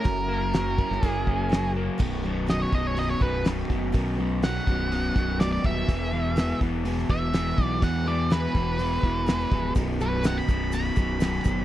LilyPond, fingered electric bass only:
\new Staff \with { instrumentName = "Fingered electric bass" } { \clef bass \time 4/4 \key fis \dorian \tempo 4 = 124 fis,,4.~ fis,,16 fis,,16 fis,,2 | \key b \major b,,,4. b,,,4 b,,,4 fis,,8 | b,,4. b,,,4 b,,,4 dis,,8 | e,,4. e,,4 e,,4 b,,8 |
e,4. e,,4 e,,4 cis,,8 | b,,,4. b,,,4 b,,,4 fis,,8 | }